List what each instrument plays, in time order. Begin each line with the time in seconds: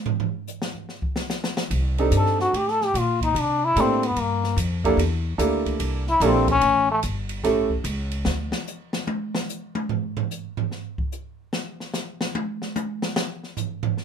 0.06 floor tom
0.20 floor tom
0.47 hi-hat pedal
0.62 snare
0.75 floor tom
0.89 snare
1.02 kick
1.16 snare
1.30 snare, hi-hat pedal
1.44 snare
1.57 snare
1.71 upright bass C2, ride
1.98 upright piano C4 D4 D#4 G4 A4, ride
2.11 upright bass G2, hi-hat pedal, ride
2.17 trombone A4
2.26 snare
2.40 trombone F#4, snare
2.53 upright bass A2, trombone G4, ride
2.68 trombone A4, snare
2.81 trombone G4, snare
2.94 upright bass A#2, hi-hat pedal, ride
2.99 trombone F4
3.21 trombone D#4, kick, ride
3.35 upright bass C3, ride
3.40 trombone D4
3.65 trombone E4
3.76 upright bass A2, upright piano A#3 D4 E4 G4 A4, hi-hat pedal, ride
3.81 trombone C4
4.03 trombone B3, ride
4.16 upright bass G2, ride
4.20 trombone A#3
4.44 snare
4.56 upright bass F2, hi-hat pedal, ride
4.84 upright piano A#3 D4 E4 G4 A4, kick, ride
4.97 upright bass E2, ride
5.38 upright bass D2, upright piano A#3 D4 E4 G4 A4, hi-hat pedal, ride
5.66 kick, ride
5.79 upright bass C2, ride
6.07 trombone E4, snare
6.20 upright bass A#1, upright piano A#3 D4 E4 G4 A4, hi-hat pedal, ride
6.27 trombone C4
6.47 trombone C#4, kick, ride
6.61 upright bass A1, ride
6.92 trombone A3
7.03 upright bass G1, hi-hat pedal, ride
7.29 ride
7.43 upright bass A1, upright piano A3 C#4 E4 G4 A4, snare, ride
7.70 kick
7.84 upright bass C#2, hi-hat pedal, ride
8.11 ride
8.25 upright bass D2, snare
8.52 snare
8.67 hi-hat pedal
8.93 snare
9.07 high tom
9.35 snare
9.49 hi-hat pedal
9.75 high tom
9.89 floor tom
10.17 floor tom
10.31 hi-hat pedal
10.57 floor tom
10.71 snare
10.98 kick
11.12 hi-hat pedal
11.53 snare
11.80 snare
11.94 snare, hi-hat pedal
12.21 snare
12.35 high tom
12.62 snare
12.76 hi-hat pedal, high tom
13.02 snare
13.16 snare
13.44 snare
13.57 floor tom, hi-hat pedal
13.83 floor tom
13.97 snare